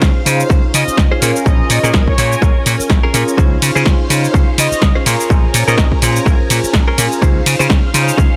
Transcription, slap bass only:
0.02 0.10 C#2 medium
0.26 0.42 C#3 medium
0.50 0.58 C#2 medium
0.74 0.83 C#3 medium
0.88 muted slap bass stroke soft
0.98 1.06 C#2 medium
1.22 1.30 A#2 medium
1.46 1.59 A#1 loud
1.59 muted slap bass stroke soft
1.70 1.78 A#2 medium
1.84 1.90 A#2 medium
1.94 2.02 A#1 medium
2.18 2.34 A#2 medium
2.42 2.50 A#1 loud
2.56 muted slap bass stroke soft
2.66 2.75 A#2 loud
2.80 muted slap bass stroke soft
2.90 2.98 A#1 medium
3.14 3.22 A#2 loud
3.38 3.54 C#2 loud
3.62 3.71 C#3 medium
3.76 3.82 C#3 medium
3.86 3.95 C#2 medium
4.10 4.26 C#3 medium
4.34 4.43 C#2 medium
4.58 4.66 C#3 loud
4.72 muted slap bass stroke soft
4.82 4.91 C#2 medium
5.06 5.15 A#2 medium
5.30 5.43 A#1 loud
5.44 muted slap bass stroke soft
5.54 5.63 A#2 medium
5.68 5.74 A#2 medium
5.78 5.87 A#1 medium
6.02 6.18 A#2 medium
6.26 6.35 A#1 medium
6.40 muted slap bass stroke soft
6.50 6.59 A#2 medium
6.64 muted slap bass stroke soft
6.74 6.83 A#1 loud
6.98 7.07 A#2 loud
7.22 7.38 C#2 loud
7.46 7.55 C#3 medium
7.60 7.66 C#3 medium
7.70 7.79 C#2 medium
7.94 8.10 C#3 medium
8.18 8.27 C#2 loud

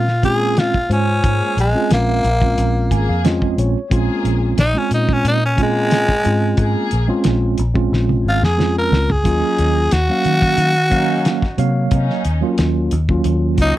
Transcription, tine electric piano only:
0.23 0.75 G#3 medium
0.23 0.75 C4 medium
0.23 0.75 C#4 medium
0.23 0.76 F4 medium
0.89 1.54 G#3 medium
0.89 1.54 C#4 medium
0.89 1.54 F4 medium
0.89 1.54 C5 medium
1.74 2.25 G#3 medium
1.74 2.25 C4 medium
1.74 2.25 C#4 medium
1.74 2.26 F4 medium
2.41 3.05 G#3 medium
2.41 3.06 C4 medium
2.41 3.06 C#4 medium
2.41 3.06 F4 medium
2.91 3.07 G#5 medium
3.09 3.24 F5 medium
3.24 3.76 G#3 medium
3.24 3.76 C4 medium
3.24 3.77 C#4 medium
3.24 3.77 F4 loud
3.24 3.56 D#5 medium
3.59 3.90 C#5 medium
3.90 4.55 G#3 medium
3.90 4.55 C4 medium
3.90 4.55 C#4 medium
3.90 4.56 F4 loud
4.74 5.38 G#3 medium
4.74 5.39 C4 medium
4.74 5.39 C#4 medium
4.74 5.40 F4 medium
5.57 6.09 G#3 medium
5.57 6.09 C4 medium
5.57 6.10 C#4 medium
5.57 6.10 F4 medium
6.24 6.88 G#3 medium
6.24 6.89 C4 medium
6.24 6.89 C#4 medium
6.24 6.89 F4 medium
7.08 7.59 G#3 loud
7.08 7.59 C4 medium
7.08 7.60 C#4 medium
7.08 7.60 F4 loud
7.74 8.39 G#3 medium
7.74 8.39 C4 medium
7.74 8.39 C#4 medium
7.74 8.40 F4 loud
8.57 9.10 G#3 medium
8.57 9.10 C4 medium
8.57 9.10 C#4 medium
8.57 9.10 F4 medium
9.23 9.88 F#3 medium
9.23 9.89 A#3 medium
9.23 9.89 C#4 medium
9.23 9.89 F4 medium
10.09 10.73 F#3 medium
10.09 10.73 A#3 medium
10.09 10.74 C#4 medium
10.09 10.74 F5 medium
10.90 11.42 F#3 medium
10.90 11.43 A#3 medium
10.90 11.43 C#4 medium
10.90 11.43 F5 loud
11.57 12.22 F#3 medium
11.57 12.22 A#3 medium
11.57 12.22 C#5 medium
11.57 12.23 F5 loud
12.41 12.92 F#3 loud
12.41 12.93 A#3 medium
12.41 12.93 C#4 medium
12.41 12.93 F4 loud
13.09 13.73 F#3 medium
13.09 13.73 A#3 medium
13.09 13.73 C#4 medium
13.09 13.73 F4 loud

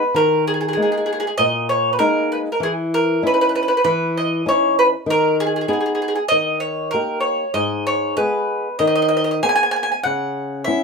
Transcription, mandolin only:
0.00 0.16 B4 medium
0.16 0.44 A#4 medium
0.48 0.53 G#4 medium
0.54 0.59 G#4 soft
0.61 0.67 G#4 medium
0.69 0.72 G#4 medium
0.73 0.81 G#4 medium
0.82 0.89 G#4 soft
0.92 0.96 G#4 medium
0.98 1.04 G#4 soft
1.06 1.12 G#4 medium
1.13 1.18 G#4 soft
1.20 1.26 G#4 medium
1.27 1.33 G#4 soft
1.38 1.66 D#5 medium
1.69 1.91 C#5 medium
1.93 1.98 B4 soft
1.99 2.30 A#4 loud
2.32 2.38 B4 medium
2.52 2.60 A#4 medium
2.63 2.71 G#4 medium
2.94 3.21 A#4 medium
3.27 3.31 B4 medium
3.34 3.39 B4 medium
3.41 3.46 B4 medium
3.49 3.54 B4 medium
3.55 3.60 B4 medium
3.63 3.67 B4 medium
3.68 3.74 B4 medium
3.77 3.82 B4 medium
3.84 4.16 B4 medium
4.17 4.44 D#5 medium
4.48 4.75 C#5 medium
4.79 4.86 B4 medium
5.10 5.36 A#4 loud
5.40 5.45 G#4 medium
5.46 5.51 G#4 soft
5.56 5.60 G#4 medium
5.61 5.66 G#4 soft
5.68 5.72 G#4 medium
5.73 5.79 G#4 soft
5.81 5.85 G#4 soft
5.86 5.93 G#4 soft
5.95 6.01 G#4 medium
6.02 6.07 G#4 soft
6.08 6.14 G#4 medium
6.16 6.22 G#4 medium
6.28 6.60 D#5 medium
6.60 6.90 C#5 medium
6.91 7.20 A#4 medium
7.20 7.51 C#5 medium
7.54 7.84 D#5 medium
7.87 8.15 C#5 medium
8.17 8.76 B4 medium
8.79 8.86 D#5 medium
8.87 8.94 D#5 medium
8.95 9.01 D#5 medium
9.02 9.07 D#5 medium
9.09 9.16 D#5 medium
9.17 9.23 D#5 medium
9.24 9.30 D#5 medium
9.31 9.38 D#5 medium
9.43 9.48 G#5 loud
9.49 9.54 G#5 medium
9.55 9.62 G#5 medium
9.63 9.70 G#5 medium
9.71 9.75 G#5 medium
9.76 9.82 G#5 soft
9.83 9.90 G#5 medium
9.92 9.99 G#5 medium
10.03 10.62 F#5 medium
10.64 10.84 E5 medium

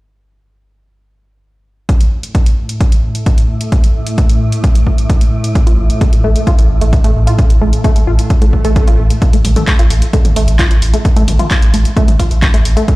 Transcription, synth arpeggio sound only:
5.67 5.71 F4 medium
6.01 6.04 A3 medium
6.24 6.30 A3 loud
6.47 6.51 F4 medium
6.81 6.84 A3 medium
7.04 7.11 A3 medium
7.27 7.31 F4 medium
7.61 7.64 A3 medium
7.84 7.91 A3 loud
8.07 8.12 F4 medium
8.42 8.44 A3 medium
8.65 8.71 A3 loud
8.88 8.92 F4 medium
9.33 9.36 A3 medium
9.56 9.63 A3 loud
9.79 9.83 F4 medium
10.13 10.16 A3 medium
10.36 10.43 A3 loud
10.59 10.63 F4 medium
10.94 10.96 A3 medium
11.16 11.23 A3 loud
11.39 11.44 F4 medium
11.74 11.76 A3 medium
11.97 12.03 A3 loud
12.19 12.24 F4 medium
12.54 12.56 A3 medium
12.77 12.83 A3 loud

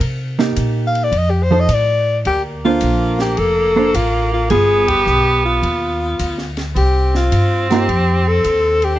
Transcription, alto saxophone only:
0.87 1.05 F5 medium
1.04 1.19 D5 medium
1.18 1.32 D#5 medium
1.30 1.44 G4 medium
1.43 1.62 C5 medium
1.60 1.75 D#5 medium
1.74 2.19 D5 medium
2.27 2.43 G4 medium
2.65 3.17 F4 medium
3.21 3.40 G4 medium
3.39 3.97 A4 loud
3.95 4.33 F4 medium
4.34 4.50 F4 medium
4.51 4.90 G#4 medium
4.88 5.45 G4 medium
5.45 6.53 F4 medium
6.77 7.18 G4 medium
7.17 7.69 F4 medium
7.70 8.29 G4 medium
8.28 8.86 A4 loud
8.85 8.99 G4 medium

